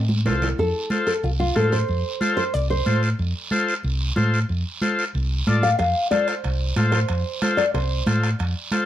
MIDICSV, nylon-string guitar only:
0, 0, Header, 1, 2, 480
1, 0, Start_track
1, 0, Key_signature, -1, "major"
1, 0, Tempo, 325556
1, 861, Time_signature, 4, 2, 24, 8
1, 13056, End_track
2, 0, Start_track
2, 0, Title_t, "Nylon-string guitar"
2, 0, Program_c, 0, 24
2, 872, Note_on_c, 0, 69, 88
2, 1314, Note_off_c, 0, 69, 0
2, 1574, Note_on_c, 0, 69, 81
2, 1801, Note_off_c, 0, 69, 0
2, 1829, Note_on_c, 0, 65, 81
2, 1902, Note_off_c, 0, 65, 0
2, 2059, Note_on_c, 0, 65, 85
2, 2300, Note_on_c, 0, 69, 81
2, 2307, Note_off_c, 0, 65, 0
2, 2538, Note_off_c, 0, 69, 0
2, 2544, Note_on_c, 0, 72, 91
2, 3444, Note_off_c, 0, 72, 0
2, 3491, Note_on_c, 0, 72, 97
2, 3739, Note_off_c, 0, 72, 0
2, 3739, Note_on_c, 0, 74, 96
2, 3979, Note_off_c, 0, 74, 0
2, 3985, Note_on_c, 0, 72, 88
2, 4430, Note_off_c, 0, 72, 0
2, 8301, Note_on_c, 0, 77, 100
2, 8513, Note_off_c, 0, 77, 0
2, 8531, Note_on_c, 0, 77, 112
2, 9000, Note_off_c, 0, 77, 0
2, 9006, Note_on_c, 0, 74, 85
2, 9252, Note_off_c, 0, 74, 0
2, 9252, Note_on_c, 0, 72, 93
2, 10181, Note_off_c, 0, 72, 0
2, 10199, Note_on_c, 0, 72, 77
2, 11112, Note_off_c, 0, 72, 0
2, 11163, Note_on_c, 0, 74, 83
2, 11396, Note_off_c, 0, 74, 0
2, 11416, Note_on_c, 0, 72, 67
2, 11866, Note_off_c, 0, 72, 0
2, 13056, End_track
0, 0, End_of_file